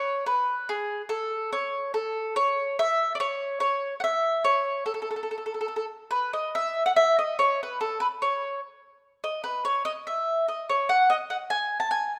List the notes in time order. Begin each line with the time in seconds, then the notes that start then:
Already playing: C#5
0.26 B4
0.69 G#4
1.09 A4
1.52 C#5
1.94 A4
2.36 C#5
2.79 E5
3.15 D5
3.20 C#5
3.60 C#5
4.00 E5 F#5
4.45 C#5
4.86 A4
4.94 A4
5.02 A4
5.11 A4
5.16 A4
5.23 A4
5.31 A4
5.38 A4
5.46 A4
5.54 A4
5.61 A4
5.68 A4
5.76 A4
6.11 B4
6.33 D#5
6.55 E5
6.86 F#5
6.96 E5
7.19 D#5
7.39 C#5
7.63 B4
7.81 A4
8.00 B4
8.22 C#5
9.24 D#5
9.44 B4
9.65 C#5
9.85 D#5
10.07 E5
10.48 D#5
10.69 C#5
10.89 F#5
11.10 D#5
11.30 F#5
11.50 G#5
11.80 A5
11.91 G#5